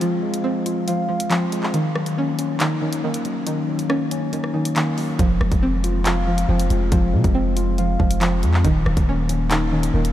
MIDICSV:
0, 0, Header, 1, 5, 480
1, 0, Start_track
1, 0, Tempo, 431655
1, 13, Time_signature, 4, 2, 24, 8
1, 11258, End_track
2, 0, Start_track
2, 0, Title_t, "Tine electric piano"
2, 0, Program_c, 0, 4
2, 0, Control_c, 0, 64, 127
2, 0, Note_on_c, 0, 53, 93
2, 0, Note_on_c, 0, 56, 83
2, 0, Note_on_c, 0, 60, 95
2, 0, Note_on_c, 0, 65, 79
2, 0, Note_on_c, 0, 77, 87
2, 16, Note_off_c, 0, 53, 0
2, 16, Note_on_c, 0, 53, 92
2, 238, Note_off_c, 0, 56, 0
2, 252, Note_on_c, 0, 56, 77
2, 253, Note_off_c, 0, 77, 0
2, 480, Note_off_c, 0, 60, 0
2, 493, Note_on_c, 0, 60, 89
2, 495, Note_off_c, 0, 65, 0
2, 733, Note_on_c, 0, 65, 91
2, 977, Note_on_c, 0, 77, 83
2, 1204, Note_off_c, 0, 65, 0
2, 1215, Note_off_c, 0, 53, 0
2, 1217, Note_on_c, 0, 65, 74
2, 1444, Note_off_c, 0, 60, 0
2, 1453, Note_off_c, 0, 56, 0
2, 1457, Note_on_c, 0, 60, 92
2, 1694, Note_on_c, 0, 56, 79
2, 1932, Note_on_c, 0, 51, 94
2, 1934, Note_off_c, 0, 56, 0
2, 1935, Note_off_c, 0, 60, 0
2, 1935, Note_off_c, 0, 77, 0
2, 1936, Note_off_c, 0, 65, 0
2, 1947, Control_c, 0, 64, 0
2, 2160, Control_c, 0, 64, 127
2, 2178, Note_on_c, 0, 54, 81
2, 2418, Note_on_c, 0, 58, 89
2, 2654, Note_on_c, 0, 61, 106
2, 2894, Note_on_c, 0, 63, 85
2, 3121, Note_off_c, 0, 61, 0
2, 3133, Note_off_c, 0, 51, 0
2, 3135, Note_on_c, 0, 61, 79
2, 3359, Note_off_c, 0, 58, 0
2, 3372, Note_on_c, 0, 58, 92
2, 3376, Note_off_c, 0, 54, 0
2, 3612, Note_on_c, 0, 54, 77
2, 3857, Note_on_c, 0, 51, 89
2, 4083, Note_off_c, 0, 54, 0
2, 4094, Note_off_c, 0, 63, 0
2, 4096, Note_on_c, 0, 54, 69
2, 4319, Note_off_c, 0, 58, 0
2, 4332, Note_on_c, 0, 58, 81
2, 4334, Note_off_c, 0, 61, 0
2, 4575, Note_on_c, 0, 61, 100
2, 4814, Note_on_c, 0, 63, 85
2, 5040, Note_off_c, 0, 61, 0
2, 5053, Note_on_c, 0, 61, 79
2, 5055, Note_off_c, 0, 51, 0
2, 5284, Note_off_c, 0, 58, 0
2, 5295, Note_off_c, 0, 54, 0
2, 5297, Note_on_c, 0, 58, 85
2, 5533, Note_on_c, 0, 54, 78
2, 5773, Note_off_c, 0, 54, 0
2, 5773, Note_off_c, 0, 61, 0
2, 5774, Note_off_c, 0, 63, 0
2, 5774, Note_on_c, 0, 53, 93
2, 5775, Note_off_c, 0, 58, 0
2, 5789, Control_c, 0, 64, 0
2, 5990, Control_c, 0, 64, 127
2, 6011, Note_on_c, 0, 56, 78
2, 6259, Note_on_c, 0, 60, 74
2, 6496, Note_on_c, 0, 65, 100
2, 6732, Note_on_c, 0, 77, 85
2, 6962, Note_off_c, 0, 65, 0
2, 6974, Note_off_c, 0, 53, 0
2, 6975, Note_on_c, 0, 65, 78
2, 7200, Note_off_c, 0, 60, 0
2, 7212, Note_off_c, 0, 56, 0
2, 7214, Note_on_c, 0, 60, 96
2, 7451, Note_on_c, 0, 56, 79
2, 7697, Note_on_c, 0, 53, 89
2, 7919, Note_off_c, 0, 56, 0
2, 7933, Note_off_c, 0, 77, 0
2, 7933, Note_on_c, 0, 56, 78
2, 8161, Note_off_c, 0, 60, 0
2, 8174, Note_off_c, 0, 65, 0
2, 8174, Note_on_c, 0, 60, 86
2, 8414, Note_on_c, 0, 65, 91
2, 8657, Note_on_c, 0, 77, 83
2, 8885, Note_off_c, 0, 65, 0
2, 8895, Note_off_c, 0, 53, 0
2, 8898, Note_on_c, 0, 65, 77
2, 9124, Note_off_c, 0, 60, 0
2, 9133, Note_off_c, 0, 56, 0
2, 9137, Note_on_c, 0, 60, 90
2, 9374, Note_on_c, 0, 56, 75
2, 9612, Note_on_c, 0, 51, 94
2, 9614, Note_off_c, 0, 56, 0
2, 9615, Note_off_c, 0, 60, 0
2, 9615, Note_off_c, 0, 77, 0
2, 9616, Note_off_c, 0, 65, 0
2, 9627, Control_c, 0, 64, 0
2, 9848, Control_c, 0, 64, 127
2, 9858, Note_on_c, 0, 54, 77
2, 10097, Note_on_c, 0, 58, 87
2, 10334, Note_on_c, 0, 61, 102
2, 10574, Note_on_c, 0, 63, 84
2, 10801, Note_off_c, 0, 61, 0
2, 10813, Note_off_c, 0, 51, 0
2, 10815, Note_on_c, 0, 61, 81
2, 11039, Note_off_c, 0, 58, 0
2, 11053, Note_on_c, 0, 58, 92
2, 11056, Note_off_c, 0, 54, 0
2, 11258, Note_off_c, 0, 58, 0
2, 11258, Note_off_c, 0, 61, 0
2, 11258, Note_off_c, 0, 63, 0
2, 11258, End_track
3, 0, Start_track
3, 0, Title_t, "Synth pluck"
3, 0, Program_c, 1, 84
3, 16, Note_on_c, 1, 53, 88
3, 489, Note_on_c, 1, 60, 72
3, 972, Note_off_c, 1, 53, 0
3, 986, Note_on_c, 1, 53, 77
3, 1194, Note_off_c, 1, 53, 0
3, 1207, Note_on_c, 1, 53, 77
3, 1431, Note_off_c, 1, 53, 0
3, 1445, Note_on_c, 1, 53, 91
3, 1929, Note_off_c, 1, 53, 0
3, 1931, Note_off_c, 1, 60, 0
3, 1935, Note_on_c, 1, 51, 90
3, 2427, Note_on_c, 1, 61, 76
3, 2881, Note_off_c, 1, 51, 0
3, 2894, Note_on_c, 1, 51, 79
3, 3118, Note_off_c, 1, 51, 0
3, 3131, Note_on_c, 1, 51, 73
3, 3369, Note_off_c, 1, 51, 0
3, 3382, Note_on_c, 1, 51, 95
3, 3843, Note_off_c, 1, 51, 0
3, 3857, Note_on_c, 1, 51, 91
3, 3860, Note_off_c, 1, 61, 0
3, 4333, Note_on_c, 1, 61, 79
3, 4799, Note_off_c, 1, 51, 0
3, 4813, Note_on_c, 1, 51, 73
3, 5033, Note_off_c, 1, 51, 0
3, 5046, Note_on_c, 1, 51, 68
3, 5281, Note_off_c, 1, 51, 0
3, 5294, Note_on_c, 1, 51, 85
3, 5768, Note_on_c, 1, 53, 89
3, 5773, Note_off_c, 1, 61, 0
3, 5774, Note_off_c, 1, 51, 0
3, 6257, Note_on_c, 1, 60, 80
3, 6723, Note_off_c, 1, 53, 0
3, 6736, Note_on_c, 1, 53, 74
3, 6960, Note_off_c, 1, 53, 0
3, 6973, Note_on_c, 1, 53, 76
3, 7203, Note_off_c, 1, 53, 0
3, 7217, Note_on_c, 1, 53, 92
3, 7683, Note_off_c, 1, 53, 0
3, 7695, Note_off_c, 1, 60, 0
3, 7696, Note_on_c, 1, 53, 87
3, 8169, Note_on_c, 1, 60, 70
3, 8653, Note_off_c, 1, 53, 0
3, 8666, Note_on_c, 1, 53, 79
3, 8874, Note_off_c, 1, 53, 0
3, 8888, Note_on_c, 1, 53, 81
3, 9112, Note_off_c, 1, 53, 0
3, 9125, Note_on_c, 1, 53, 96
3, 9609, Note_off_c, 1, 53, 0
3, 9611, Note_off_c, 1, 60, 0
3, 9615, Note_on_c, 1, 51, 89
3, 10107, Note_on_c, 1, 61, 74
3, 10561, Note_off_c, 1, 51, 0
3, 10574, Note_on_c, 1, 51, 77
3, 10797, Note_off_c, 1, 51, 0
3, 10811, Note_on_c, 1, 51, 74
3, 11049, Note_off_c, 1, 51, 0
3, 11063, Note_on_c, 1, 51, 97
3, 11258, Note_off_c, 1, 51, 0
3, 11258, Note_off_c, 1, 61, 0
3, 11258, End_track
4, 0, Start_track
4, 0, Title_t, "808-style bass"
4, 0, Program_c, 2, 38
4, 5774, Note_on_c, 2, 29, 113
4, 6004, Note_off_c, 2, 29, 0
4, 6014, Note_on_c, 2, 29, 105
4, 6129, Note_off_c, 2, 29, 0
4, 6134, Note_on_c, 2, 29, 99
4, 7171, Note_off_c, 2, 29, 0
4, 7214, Note_on_c, 2, 29, 107
4, 7444, Note_off_c, 2, 29, 0
4, 7454, Note_on_c, 2, 29, 106
4, 7684, Note_off_c, 2, 29, 0
4, 7694, Note_on_c, 2, 29, 104
4, 7933, Note_on_c, 2, 48, 99
4, 7950, Note_off_c, 2, 29, 0
4, 8048, Note_off_c, 2, 48, 0
4, 8053, Note_on_c, 2, 29, 101
4, 8860, Note_off_c, 2, 29, 0
4, 8893, Note_on_c, 2, 29, 106
4, 9374, Note_on_c, 2, 41, 101
4, 9390, Note_off_c, 2, 29, 0
4, 9602, Note_off_c, 2, 41, 0
4, 9614, Note_on_c, 2, 27, 114
4, 9844, Note_off_c, 2, 27, 0
4, 9854, Note_on_c, 2, 27, 107
4, 9967, Note_off_c, 2, 27, 0
4, 9973, Note_on_c, 2, 27, 97
4, 11010, Note_off_c, 2, 27, 0
4, 11053, Note_on_c, 2, 27, 110
4, 11258, Note_off_c, 2, 27, 0
4, 11258, End_track
5, 0, Start_track
5, 0, Title_t, "Drums"
5, 14, Note_on_c, 9, 42, 80
5, 125, Note_off_c, 9, 42, 0
5, 374, Note_on_c, 9, 42, 73
5, 485, Note_off_c, 9, 42, 0
5, 734, Note_on_c, 9, 42, 86
5, 845, Note_off_c, 9, 42, 0
5, 974, Note_on_c, 9, 42, 76
5, 1085, Note_off_c, 9, 42, 0
5, 1334, Note_on_c, 9, 42, 97
5, 1445, Note_off_c, 9, 42, 0
5, 1454, Note_on_c, 9, 42, 78
5, 1455, Note_on_c, 9, 39, 121
5, 1565, Note_off_c, 9, 42, 0
5, 1566, Note_off_c, 9, 39, 0
5, 1694, Note_on_c, 9, 42, 66
5, 1805, Note_off_c, 9, 42, 0
5, 1815, Note_on_c, 9, 39, 78
5, 1926, Note_off_c, 9, 39, 0
5, 1934, Note_on_c, 9, 42, 83
5, 2045, Note_off_c, 9, 42, 0
5, 2174, Note_on_c, 9, 37, 91
5, 2285, Note_off_c, 9, 37, 0
5, 2294, Note_on_c, 9, 42, 72
5, 2405, Note_off_c, 9, 42, 0
5, 2654, Note_on_c, 9, 42, 87
5, 2765, Note_off_c, 9, 42, 0
5, 2893, Note_on_c, 9, 42, 75
5, 2894, Note_on_c, 9, 39, 117
5, 3005, Note_off_c, 9, 39, 0
5, 3005, Note_off_c, 9, 42, 0
5, 3253, Note_on_c, 9, 42, 92
5, 3364, Note_off_c, 9, 42, 0
5, 3493, Note_on_c, 9, 42, 85
5, 3604, Note_off_c, 9, 42, 0
5, 3613, Note_on_c, 9, 42, 69
5, 3725, Note_off_c, 9, 42, 0
5, 3854, Note_on_c, 9, 42, 82
5, 3965, Note_off_c, 9, 42, 0
5, 4214, Note_on_c, 9, 42, 73
5, 4325, Note_off_c, 9, 42, 0
5, 4333, Note_on_c, 9, 37, 101
5, 4445, Note_off_c, 9, 37, 0
5, 4574, Note_on_c, 9, 42, 84
5, 4685, Note_off_c, 9, 42, 0
5, 4814, Note_on_c, 9, 42, 75
5, 4925, Note_off_c, 9, 42, 0
5, 4934, Note_on_c, 9, 37, 67
5, 5045, Note_off_c, 9, 37, 0
5, 5174, Note_on_c, 9, 42, 95
5, 5285, Note_off_c, 9, 42, 0
5, 5294, Note_on_c, 9, 42, 81
5, 5295, Note_on_c, 9, 39, 126
5, 5405, Note_off_c, 9, 42, 0
5, 5406, Note_off_c, 9, 39, 0
5, 5534, Note_on_c, 9, 46, 48
5, 5645, Note_off_c, 9, 46, 0
5, 5774, Note_on_c, 9, 36, 117
5, 5774, Note_on_c, 9, 42, 80
5, 5885, Note_off_c, 9, 36, 0
5, 5885, Note_off_c, 9, 42, 0
5, 6014, Note_on_c, 9, 37, 94
5, 6125, Note_off_c, 9, 37, 0
5, 6133, Note_on_c, 9, 36, 104
5, 6134, Note_on_c, 9, 42, 73
5, 6245, Note_off_c, 9, 36, 0
5, 6245, Note_off_c, 9, 42, 0
5, 6494, Note_on_c, 9, 42, 88
5, 6605, Note_off_c, 9, 42, 0
5, 6734, Note_on_c, 9, 39, 119
5, 6734, Note_on_c, 9, 42, 77
5, 6845, Note_off_c, 9, 39, 0
5, 6845, Note_off_c, 9, 42, 0
5, 7094, Note_on_c, 9, 42, 92
5, 7205, Note_off_c, 9, 42, 0
5, 7334, Note_on_c, 9, 42, 85
5, 7445, Note_off_c, 9, 42, 0
5, 7454, Note_on_c, 9, 42, 68
5, 7565, Note_off_c, 9, 42, 0
5, 7693, Note_on_c, 9, 42, 80
5, 7694, Note_on_c, 9, 36, 115
5, 7805, Note_off_c, 9, 36, 0
5, 7805, Note_off_c, 9, 42, 0
5, 8053, Note_on_c, 9, 36, 102
5, 8054, Note_on_c, 9, 42, 73
5, 8164, Note_off_c, 9, 36, 0
5, 8165, Note_off_c, 9, 42, 0
5, 8413, Note_on_c, 9, 42, 85
5, 8525, Note_off_c, 9, 42, 0
5, 8653, Note_on_c, 9, 42, 76
5, 8765, Note_off_c, 9, 42, 0
5, 8893, Note_on_c, 9, 36, 90
5, 9004, Note_off_c, 9, 36, 0
5, 9014, Note_on_c, 9, 42, 93
5, 9125, Note_off_c, 9, 42, 0
5, 9134, Note_on_c, 9, 39, 123
5, 9134, Note_on_c, 9, 42, 80
5, 9245, Note_off_c, 9, 39, 0
5, 9245, Note_off_c, 9, 42, 0
5, 9374, Note_on_c, 9, 42, 68
5, 9485, Note_off_c, 9, 42, 0
5, 9495, Note_on_c, 9, 39, 77
5, 9606, Note_off_c, 9, 39, 0
5, 9614, Note_on_c, 9, 36, 113
5, 9614, Note_on_c, 9, 42, 80
5, 9725, Note_off_c, 9, 36, 0
5, 9725, Note_off_c, 9, 42, 0
5, 9854, Note_on_c, 9, 37, 90
5, 9965, Note_off_c, 9, 37, 0
5, 9973, Note_on_c, 9, 36, 101
5, 9974, Note_on_c, 9, 42, 70
5, 10084, Note_off_c, 9, 36, 0
5, 10085, Note_off_c, 9, 42, 0
5, 10334, Note_on_c, 9, 42, 84
5, 10445, Note_off_c, 9, 42, 0
5, 10573, Note_on_c, 9, 42, 77
5, 10574, Note_on_c, 9, 39, 121
5, 10685, Note_off_c, 9, 39, 0
5, 10685, Note_off_c, 9, 42, 0
5, 10934, Note_on_c, 9, 42, 94
5, 11045, Note_off_c, 9, 42, 0
5, 11174, Note_on_c, 9, 42, 84
5, 11258, Note_off_c, 9, 42, 0
5, 11258, End_track
0, 0, End_of_file